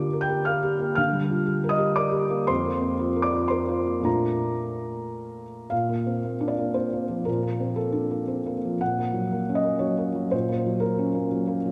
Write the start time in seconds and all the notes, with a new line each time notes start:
Already playing: D3 A#3 F4 G4 D5 D6
0.13 A#4
0.21 G5 G6
0.29 G4
0.45 A#4 F5 F6
0.63 G4
0.79 A#3
0.95 D3 F5 F6
1.13 G3
1.30 F4
1.46 G4
1.64 A#4
1.69 D#5 D#6
1.78 G4
1.96 A#4 D5 D6
2.11 G4
2.30 A#3
2.47 F2 C5 C6
2.65 A#3
2.81 C4
2.99 F4
3.16 A#4
3.22 D5 D6
3.33 F4
3.48 A#4 C5 C6
3.69 F4
3.87 A#3
4.01 A#2 A3 D4
4.05 A#3 F4 A#5
5.70 A#2 F5
5.89 A#3
6.06 C4
6.24 A#3
6.41 D4
6.48 D5
6.58 A#3
6.74 C4 C5
6.93 A#3
7.09 F3
7.25 A#2 A#4
7.43 A#3
7.60 C4
7.76 A#3 A4
7.92 D4
8.11 A#3
8.28 C4
8.46 A#3
8.65 F3
8.81 A#2 F#5
8.98 A#3
9.14 F#3
9.31 A#3
9.49 C#4
9.55 D#5
9.64 A#3
9.79 F#3 C#5
9.98 A#3
10.15 F#3
10.31 A#2 C5
10.49 A#3
10.66 F#3
10.80 A#3 A#4
10.99 C#4
11.15 A#3
11.31 F#3
11.47 A#3
11.66 F#3